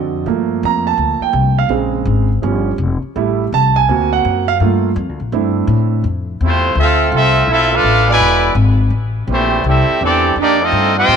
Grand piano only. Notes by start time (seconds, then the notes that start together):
Already playing: D3 C4 F#4 D#5
0.27 F3 A3 A#3
0.65 A#5
0.87 A5
1.22 G5
1.59 F5
1.70 C#3 G#3 C4
2.42 F3 G3 C#4
3.16 G3 A3 E4
3.54 A5
3.76 G#5
3.89 A#3 C4 F#4
4.13 F#5
4.48 F5
4.61 A3 A#3 F4
5.33 A3 C4 D4 E4